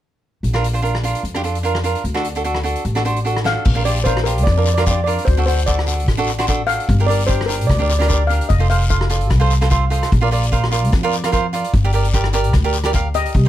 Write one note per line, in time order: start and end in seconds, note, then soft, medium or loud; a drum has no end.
0.43 1.13 A#1 medium
0.43 closed hi-hat soft
0.53 0.66 D4 medium
0.53 0.66 F4 medium
0.53 0.66 A#4 medium
0.53 cross-stick medium
0.64 closed hi-hat medium
0.73 0.80 D4 medium
0.73 0.80 F4 medium
0.73 0.80 C5 medium
0.73 closed hi-hat medium
0.82 0.96 D4 medium
0.82 0.96 F4 medium
0.82 0.96 A#4 medium
0.82 closed hi-hat medium
0.95 cross-stick medium
1.03 1.22 D4 medium
1.03 1.22 F4 medium
1.03 1.23 A#4 medium
1.03 closed hi-hat medium
1.15 closed hi-hat medium
1.23 1.93 F2 medium
1.23 closed hi-hat medium
1.35 1.41 D4 medium
1.35 1.41 F4 medium
1.35 1.41 G4 medium
1.35 cross-stick medium
1.44 1.57 D4 medium
1.44 1.57 F4 medium
1.44 1.57 A4 medium
1.44 closed hi-hat medium
1.55 closed hi-hat medium
1.63 1.77 D4 medium
1.63 1.77 F4 medium
1.63 1.77 A#4 medium
1.63 closed hi-hat medium
1.75 cross-stick medium
1.83 2.02 D4 medium
1.83 2.03 F4 soft
1.83 2.03 A#4 medium
1.83 closed hi-hat medium
1.95 closed hi-hat medium
2.04 2.74 D2 medium
2.04 closed hi-hat medium
2.14 2.27 D4 medium
2.14 2.27 F#4 medium
2.14 2.27 A4 medium
2.14 cross-stick medium
2.24 closed hi-hat medium
2.35 2.41 D4 medium
2.35 2.42 F#4 medium
2.35 2.42 A4 medium
2.35 closed hi-hat medium
2.44 2.57 D4 medium
2.44 2.58 F#4 medium
2.44 2.58 A4 medium
2.44 closed hi-hat medium
2.55 cross-stick medium
2.63 2.83 D4 medium
2.63 2.83 F#4 medium
2.63 2.83 A4 medium
2.63 closed hi-hat medium
2.75 closed hi-hat medium
2.85 3.55 A1 medium
2.85 closed hi-hat soft
2.95 3.01 D4 medium
2.95 3.02 F#4 medium
2.95 3.02 A4 medium
2.95 cross-stick medium
3.05 3.18 D4 medium
3.05 3.18 F#4 medium
3.05 3.18 C5 medium
3.05 closed hi-hat medium
3.16 closed hi-hat soft
3.25 3.38 D4 medium
3.25 3.38 F#4 medium
3.25 3.38 A4 medium
3.25 closed hi-hat medium
3.37 cross-stick medium
3.44 3.63 D4 medium
3.44 3.63 F#4 medium
3.44 3.64 A4 medium
3.44 3.83 F5 medium
3.44 snare soft
3.65 4.47 A#1 medium
3.65 kick medium
3.65 crash medium
3.65 long guiro medium
3.75 3.82 D4 medium
3.75 3.82 F4 medium
3.75 3.82 A#4 medium
3.85 3.98 D4 medium
3.85 3.98 F4 soft
3.85 3.99 G4 medium
3.85 3.94 D5 medium
3.85 closed hi-hat medium
3.96 closed hi-hat medium
4.04 4.18 D4 medium
4.04 4.18 F4 medium
4.04 4.19 A#4 medium
4.04 4.24 C5 medium
4.04 kick medium
4.04 closed hi-hat medium
4.04 short guiro medium
4.17 cross-stick medium
4.24 4.44 D4 medium
4.24 4.44 F4 soft
4.24 4.45 G4 medium
4.24 4.46 A#4 medium
4.24 closed hi-hat medium
4.24 short guiro medium
4.38 closed hi-hat medium
4.43 5.16 F2 loud
4.43 4.50 D5 medium
4.43 kick loud
4.43 cross-stick medium
4.43 closed hi-hat medium
4.43 long guiro medium
4.52 4.56 D5 medium
4.57 4.69 D4 medium
4.57 4.69 F4 medium
4.57 4.69 A#4 medium
4.57 4.64 D5 medium
4.65 4.73 D5 medium
4.65 closed hi-hat medium
4.65 short guiro medium
4.74 4.83 D4 medium
4.74 4.83 A#4 medium
4.74 4.80 D5 medium
4.74 cross-stick medium
4.74 closed hi-hat medium
4.78 4.83 F4 medium
4.78 4.89 D5 medium
4.86 4.99 D4 medium
4.86 4.99 F4 medium
4.86 4.99 G4 medium
4.86 kick medium
4.86 closed hi-hat medium
4.86 short guiro medium
4.91 4.99 D5 medium
5.04 5.25 D4 soft
5.04 5.25 F4 soft
5.04 5.25 A#4 medium
5.04 5.14 D5 medium
5.04 closed hi-hat medium
5.18 closed hi-hat medium
5.25 6.08 D2 medium
5.25 5.45 C5 medium
5.25 kick loud
5.25 closed hi-hat medium
5.25 long guiro medium
5.37 5.43 D4 medium
5.37 5.44 F#4 medium
5.37 5.44 A4 medium
5.46 5.60 D4 medium
5.46 5.60 F#4 medium
5.46 5.60 A4 medium
5.46 5.68 C5 medium
5.46 closed hi-hat medium
5.59 closed hi-hat soft
5.66 5.80 D4 medium
5.66 5.80 F#4 medium
5.66 5.80 A4 medium
5.66 6.04 D5 medium
5.66 kick medium
5.66 closed hi-hat medium
5.66 short guiro medium
5.79 cross-stick medium
5.86 6.05 D4 medium
5.86 6.06 F#4 medium
5.86 6.06 A4 medium
5.86 closed hi-hat medium
5.86 short guiro medium
6.00 closed hi-hat medium
6.06 6.77 A1 medium
6.06 kick medium
6.06 cross-stick medium
6.06 closed hi-hat soft
6.06 long guiro medium
6.18 6.30 D4 medium
6.18 6.30 F#4 medium
6.18 6.30 A4 medium
6.27 closed hi-hat medium
6.27 short guiro medium
6.38 6.44 D4 medium
6.38 6.45 F#4 medium
6.38 6.45 C5 medium
6.38 cross-stick medium
6.38 closed hi-hat medium
6.47 6.61 D4 medium
6.47 6.61 F#4 medium
6.47 6.61 A4 medium
6.47 kick medium
6.47 closed hi-hat medium
6.47 short guiro medium
6.67 6.86 D4 medium
6.67 6.87 F#4 medium
6.67 6.87 A4 medium
6.67 7.09 F5 medium
6.67 closed hi-hat medium
6.80 closed hi-hat soft
6.88 7.70 G1 loud
6.88 kick medium
6.88 closed hi-hat medium
6.88 long guiro medium
6.99 7.05 D4 medium
6.99 7.05 G4 medium
6.99 7.06 A#4 medium
7.07 7.21 D4 medium
7.07 7.21 G4 medium
7.07 7.22 A#4 medium
7.07 7.16 D5 medium
7.07 closed hi-hat medium
7.20 closed hi-hat medium
7.27 7.41 D4 medium
7.27 7.41 G4 medium
7.27 7.41 A#4 medium
7.27 7.36 C5 medium
7.27 kick medium
7.27 closed hi-hat medium
7.27 short guiro medium
7.41 cross-stick medium
7.46 7.67 D4 medium
7.46 7.67 G4 medium
7.46 7.66 A#4 medium
7.46 7.67 A#4 medium
7.46 closed hi-hat medium
7.46 short guiro medium
7.61 closed hi-hat medium
7.67 8.39 D2 medium
7.67 7.73 D5 medium
7.67 kick medium
7.67 cross-stick medium
7.67 closed hi-hat medium
7.67 long guiro medium
7.74 7.81 D5 medium
7.79 7.91 D4 medium
7.79 7.92 G4 medium
7.79 7.92 A#4 medium
7.79 7.88 D5 medium
7.90 7.98 D5 medium
7.90 closed hi-hat medium
7.90 short guiro medium
7.99 8.06 D4 medium
7.99 8.06 G4 medium
7.99 8.06 A#4 medium
7.99 8.05 D5 medium
7.99 cross-stick medium
7.99 closed hi-hat medium
8.06 8.22 D4 medium
8.06 8.22 G4 soft
8.06 8.22 A#4 medium
8.06 8.13 D5 medium
8.06 kick medium
8.06 short guiro medium
8.11 8.22 D5 medium
8.11 closed hi-hat medium
8.27 8.48 D4 medium
8.27 8.48 G4 medium
8.27 8.49 A#4 medium
8.27 8.50 F5 medium
8.27 closed hi-hat medium
8.41 closed hi-hat medium
8.49 9.31 F1 medium
8.49 8.58 D#5 medium
8.49 kick medium
8.49 closed hi-hat medium
8.49 long guiro medium
8.59 8.66 F4 medium
8.59 8.66 A4 medium
8.59 8.66 C5 medium
8.70 8.83 F4 medium
8.70 8.83 A4 medium
8.70 8.83 C5 medium
8.70 8.89 F5 medium
8.70 closed hi-hat medium
8.81 closed hi-hat medium
8.90 9.03 F4 medium
8.90 9.03 A4 medium
8.90 9.03 C5 medium
8.90 9.28 F5 medium
8.90 kick medium
8.90 closed hi-hat medium
8.90 short guiro medium
9.01 cross-stick medium
9.09 9.29 F4 medium
9.09 9.29 A4 medium
9.09 9.29 D5 medium
9.09 closed hi-hat medium
9.09 short guiro medium
9.21 closed hi-hat medium
9.30 10.01 C2 medium
9.30 kick loud
9.30 cross-stick medium
9.30 closed hi-hat medium
9.30 long guiro medium
9.40 9.53 F4 medium
9.40 9.53 A4 medium
9.40 9.53 C5 medium
9.51 closed hi-hat medium
9.51 short guiro medium
9.61 9.67 F4 medium
9.61 9.67 A4 medium
9.61 9.68 C5 medium
9.61 cross-stick medium
9.61 closed hi-hat medium
9.70 9.84 F4 medium
9.70 9.84 A4 medium
9.70 9.84 C5 medium
9.70 9.90 F5 soft
9.70 kick medium
9.70 closed hi-hat soft
9.70 short guiro medium
9.90 10.09 F4 medium
9.90 10.09 A4 medium
9.90 10.10 C5 medium
9.90 10.10 D#5 soft
9.90 closed hi-hat medium
10.03 cross-stick medium
10.03 closed hi-hat medium
10.12 10.93 A#1 medium
10.12 kick loud
10.12 closed hi-hat medium
10.12 long guiro soft
10.21 10.28 F4 medium
10.21 10.28 A#4 medium
10.21 10.28 D5 medium
10.31 10.44 F4 medium
10.31 10.45 A#4 medium
10.31 10.45 D5 medium
10.31 closed hi-hat medium
10.43 closed hi-hat medium
10.52 10.65 F4 medium
10.52 10.65 A#4 medium
10.52 10.65 C5 medium
10.52 kick medium
10.52 closed hi-hat medium
10.52 short guiro medium
10.64 cross-stick medium
10.71 10.90 F4 medium
10.71 10.90 A#4 medium
10.71 10.91 D5 medium
10.71 closed hi-hat medium
10.71 short guiro medium
10.84 closed hi-hat medium
10.92 11.62 F2 medium
10.92 kick loud
10.92 cross-stick medium
10.92 closed hi-hat medium
10.92 long guiro medium
11.03 11.15 F4 medium
11.03 11.15 A#4 medium
11.03 11.16 D5 loud
11.12 closed hi-hat medium
11.12 short guiro medium
11.24 11.30 F4 medium
11.24 11.30 A#4 medium
11.24 11.30 D5 medium
11.24 cross-stick medium
11.24 closed hi-hat medium
11.32 11.45 F4 medium
11.32 11.46 A#4 medium
11.32 11.46 C5 medium
11.32 kick medium
11.32 closed hi-hat medium
11.32 short guiro medium
11.53 11.71 F4 medium
11.53 11.72 A#4 medium
11.53 11.72 D5 medium
11.53 closed hi-hat medium
11.64 closed hi-hat medium
11.73 12.54 G1 medium
11.73 kick medium
11.73 closed hi-hat medium
11.73 long guiro medium
11.84 11.90 G4 medium
11.84 11.90 A#4 medium
11.84 11.90 D5 medium
11.92 12.06 G4 medium
11.92 12.06 A#4 medium
11.92 12.07 D5 medium
11.92 closed hi-hat medium
12.05 closed hi-hat medium
12.13 12.27 G4 medium
12.13 12.27 A#4 medium
12.13 12.27 D5 medium
12.13 kick medium
12.13 closed hi-hat medium
12.13 short guiro medium
12.24 cross-stick medium
12.33 12.52 G4 medium
12.33 12.52 A#4 medium
12.33 12.52 D5 medium
12.33 closed hi-hat medium
12.33 short guiro medium
12.44 closed hi-hat medium
12.53 13.24 D2 medium
12.53 kick medium
12.53 cross-stick medium
12.53 closed hi-hat medium
12.53 long guiro medium
12.64 12.76 G4 medium
12.64 12.76 A#4 medium
12.64 12.76 D5 medium
12.73 closed hi-hat medium
12.73 short guiro medium
12.84 12.90 G4 medium
12.84 12.91 A#4 medium
12.84 12.91 D5 medium
12.84 cross-stick medium
12.84 closed hi-hat soft
12.93 13.07 G4 medium
12.93 13.07 A#4 medium
12.93 13.07 F5 medium
12.93 kick medium
12.93 closed hi-hat medium
12.93 short guiro medium
13.14 13.33 G4 medium
13.14 13.33 A#4 soft
13.14 13.33 D5 medium
13.14 13.49 D#5 medium
13.14 closed hi-hat medium
13.25 closed hi-hat medium
13.33 13.49 C2 medium
13.33 kick loud
13.33 closed hi-hat medium
13.33 long guiro medium
13.45 13.49 D#4 medium